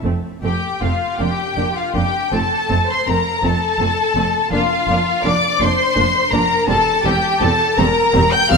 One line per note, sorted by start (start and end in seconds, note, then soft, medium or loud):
0.03 0.12 F1 medium
0.03 0.11 F2 soft
0.03 0.12 A3 soft
0.03 0.12 C4 soft
0.43 0.51 F1 soft
0.43 0.52 F2 soft
0.43 0.52 A3 soft
0.43 0.51 C4 soft
0.43 0.80 G4 soft
0.43 0.80 G5 medium
0.82 0.90 F1 soft
0.82 0.90 F2 soft
0.82 0.90 A3 soft
0.82 0.90 C4 soft
0.82 1.20 F4 soft
0.82 1.20 F5 soft
1.19 1.28 F1 soft
1.19 1.28 F2 soft
1.19 1.28 A#3 soft
1.19 1.27 D4 soft
1.19 1.76 G4 medium
1.19 1.76 G5 medium
1.56 1.65 F1 soft
1.56 1.66 F2 soft
1.56 1.65 A#3 soft
1.56 1.64 D4 soft
1.76 1.95 F4 soft
1.76 1.96 F5 medium
1.94 2.03 F1 soft
1.94 2.04 F2 soft
1.94 2.02 A#3 soft
1.94 2.02 D4 soft
1.94 2.33 G4 medium
1.94 2.33 G5 medium
2.32 2.41 F1 medium
2.32 2.42 F2 soft
2.32 2.40 A3 soft
2.32 2.40 C4 soft
2.32 2.88 A4 medium
2.32 2.89 A5 medium
2.69 2.79 F1 soft
2.69 2.80 F2 soft
2.69 2.77 A3 soft
2.69 2.77 C4 soft
2.90 3.08 C5 medium
2.90 3.08 C6 medium
3.07 3.15 F1 soft
3.07 3.16 F2 medium
3.07 3.16 A3 soft
3.07 3.16 C4 soft
3.07 3.44 A#4 medium
3.07 3.44 A#5 medium
3.42 3.50 F1 medium
3.42 3.52 F2 soft
3.42 3.52 A3 soft
3.42 3.52 C4 soft
3.42 4.52 A4 medium
3.42 4.53 A5 medium
3.79 3.87 F1 medium
3.79 3.88 F2 soft
3.79 3.88 A3 soft
3.79 3.88 C4 soft
4.15 4.23 F1 medium
4.15 4.24 F2 medium
4.15 4.24 A3 soft
4.15 4.25 C4 soft
4.51 4.59 F1 medium
4.51 4.60 F2 medium
4.51 4.61 A#3 medium
4.51 4.61 D4 medium
4.51 5.23 F4 medium
4.51 5.23 F5 medium
4.88 4.96 F1 medium
4.88 4.96 F2 medium
4.88 4.97 A#3 soft
4.88 4.98 D4 soft
5.24 5.32 F1 medium
5.24 5.33 F2 medium
5.24 5.33 A#3 soft
5.24 5.33 D4 soft
5.24 5.61 D5 medium
5.24 5.61 D6 medium
5.60 5.68 F1 medium
5.60 5.69 F2 medium
5.60 5.68 A#3 medium
5.60 5.68 D4 medium
5.60 6.33 C5 medium
5.60 6.33 C6 medium
5.96 6.04 F1 medium
5.96 6.05 F2 medium
5.96 6.04 A#3 medium
5.96 6.04 D4 medium
6.31 6.40 F1 medium
6.31 6.40 F2 medium
6.31 6.39 A#3 medium
6.31 6.40 D4 medium
6.31 6.69 A#4 medium
6.31 6.68 A#5 medium
6.67 6.76 E1 medium
6.67 6.77 E2 medium
6.67 6.75 G3 medium
6.67 6.76 C4 medium
6.67 7.05 A4 medium
6.67 7.04 A5 medium
7.04 7.13 E1 medium
7.04 7.13 E2 medium
7.04 7.12 G3 medium
7.04 7.12 C4 medium
7.04 7.42 G4 medium
7.04 7.42 G5 medium
7.41 7.50 E1 medium
7.41 7.51 E2 medium
7.41 7.49 G3 medium
7.41 7.49 C4 medium
7.41 7.79 A4 medium
7.41 7.78 A5 medium
7.78 7.87 E1 medium
7.78 7.87 E2 medium
7.78 7.86 G3 medium
7.78 7.86 C4 medium
7.78 8.33 A#4 medium
7.78 8.32 A#5 medium
8.14 8.22 E1 medium
8.14 8.24 E2 medium
8.14 8.22 G3 medium
8.14 8.22 C4 medium
8.33 8.51 G5 medium
8.33 8.50 G6 medium
8.49 8.57 E1 medium
8.49 8.57 E2 medium
8.49 8.57 G3 medium
8.49 8.57 C4 medium
8.49 8.57 F5 medium
8.49 8.57 F6 loud